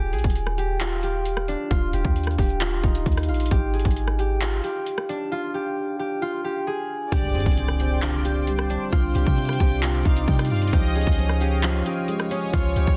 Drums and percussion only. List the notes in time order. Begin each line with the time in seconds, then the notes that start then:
0.13 closed hi-hat
0.19 closed hi-hat
0.24 kick, closed hi-hat
0.30 closed hi-hat
0.35 closed hi-hat
0.47 cross-stick
0.58 closed hi-hat
0.81 clap, closed hi-hat
1.03 closed hi-hat
1.25 closed hi-hat
1.37 cross-stick
1.48 closed hi-hat
1.71 kick, closed hi-hat
1.93 closed hi-hat
2.05 kick
2.16 closed hi-hat
2.23 cross-stick, closed hi-hat
2.31 closed hi-hat
2.38 kick, closed hi-hat, open hi-hat
2.50 closed hi-hat
2.61 clap, closed hi-hat
2.84 kick, closed hi-hat
2.95 closed hi-hat
3.06 kick, closed hi-hat
3.12 closed hi-hat
3.17 cross-stick, closed hi-hat
3.23 closed hi-hat
3.29 closed hi-hat
3.34 closed hi-hat
3.40 closed hi-hat
3.46 closed hi-hat
3.51 kick, closed hi-hat
3.74 closed hi-hat
3.79 closed hi-hat
3.85 kick, closed hi-hat
3.91 closed hi-hat
3.96 closed hi-hat
4.08 cross-stick
4.19 closed hi-hat
4.41 clap, closed hi-hat
4.64 closed hi-hat
4.86 closed hi-hat
4.98 cross-stick
5.09 closed hi-hat
7.12 kick, closed hi-hat
7.35 closed hi-hat
7.40 closed hi-hat
7.46 kick, closed hi-hat
7.52 closed hi-hat
7.57 closed hi-hat
7.68 cross-stick
7.80 closed hi-hat
8.02 clap, closed hi-hat
8.25 closed hi-hat
8.47 closed hi-hat
8.59 cross-stick
8.70 closed hi-hat
8.93 kick, closed hi-hat
9.15 closed hi-hat
9.26 kick
9.38 closed hi-hat
9.45 cross-stick, closed hi-hat
9.53 closed hi-hat
9.60 kick, closed hi-hat, open hi-hat
9.71 closed hi-hat
9.83 clap, closed hi-hat
10.05 kick, closed hi-hat
10.17 closed hi-hat
10.28 kick, closed hi-hat
10.34 closed hi-hat
10.39 cross-stick, closed hi-hat
10.45 closed hi-hat
10.50 closed hi-hat
10.56 closed hi-hat
10.62 closed hi-hat
10.67 closed hi-hat
10.73 kick, closed hi-hat
10.96 closed hi-hat
11.01 closed hi-hat
11.07 kick, closed hi-hat
11.13 closed hi-hat
11.18 closed hi-hat
11.29 cross-stick
11.41 closed hi-hat
11.63 clap, closed hi-hat
11.86 closed hi-hat
12.08 closed hi-hat
12.20 cross-stick
12.31 closed hi-hat
12.53 kick, closed hi-hat
12.76 closed hi-hat
12.87 kick